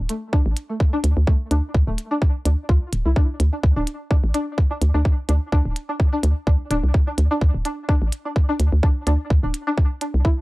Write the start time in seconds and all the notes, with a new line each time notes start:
0.09 A3, closed hi-hat
0.33 D4, kick
0.46 A1
0.56 closed hi-hat
0.69 A3
0.80 kick
0.93 D4
1.04 D2, closed hi-hat
1.17 D2
1.27 A3, kick
1.51 D2 D4, closed hi-hat
1.74 D2, kick
1.87 D1 A3
1.98 closed hi-hat
2.11 D4
2.22 kick
2.45 D2 D4, closed hi-hat
2.69 D2 F4, kick
2.93 D1, closed hi-hat
3.06 C2 E4
3.16 D4, kick
3.40 D2, closed hi-hat
3.53 D4
3.63 D2, kick
3.76 D1 D4
3.87 closed hi-hat
4.11 D4, kick
4.24 A1
4.34 D4, closed hi-hat
4.58 kick
4.71 D4
4.82 D2, closed hi-hat
4.94 D2 D4
5.05 kick
5.29 D2 D4, closed hi-hat
5.52 D2 D4, kick
5.65 D1
5.76 closed hi-hat
5.89 D4
6.00 kick
6.13 D4
6.23 D2, closed hi-hat
6.47 D2 D4, kick
6.71 D1 D4, closed hi-hat
6.83 C2
6.94 kick
7.07 D4
7.18 D2, closed hi-hat
7.31 D4
7.41 D2, kick
7.54 D1
7.65 D4, closed hi-hat
7.89 D4, kick
8.02 A1
8.12 closed hi-hat
8.25 D4
8.36 kick
8.49 D4
8.60 D2, closed hi-hat
8.72 D2
8.83 D4, kick
9.07 D2 D4, closed hi-hat
9.30 D2, kick
9.43 D1 D4
9.54 closed hi-hat
9.67 D4
9.78 kick
10.01 D4, closed hi-hat
10.14 C2
10.25 E4, kick